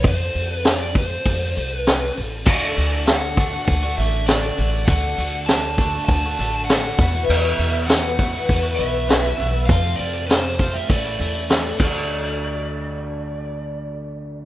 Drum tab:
CC |--------|x-------|--------|x-------|
HH |oooooooo|-ooooooo|oooooooo|-ooooooo|
SD |--o---o-|--o---o-|--o---o-|--o---o-|
BD |o--oo---|o--oo---|o--oo--o|---oo---|

CC |-------x|--------|
HH |ooooooo-|--------|
SD |--o---o-|--------|
BD |o--oo--o|--------|